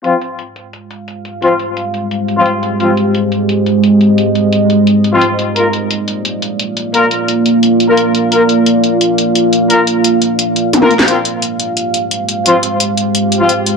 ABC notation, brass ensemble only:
X:1
M:4/4
L:1/16
Q:1/4=174
K:Fdor
V:1 name="Brass ensemble"
[F,CF] z12 z3 | [F,CF] z8 z2 [F,CF] z4 | [F,CF] z12 z3 | z8 z3 [F,CF] z4 |
[B,FB] z12 z3 | [B,FB] z8 z2 [B,FB] z4 | [B,FB] z12 z3 | [B,FB] z12 [B,FB] z2 |
[F,CF] z12 z3 | [F,CF] z8 z2 [F,CF] z4 |]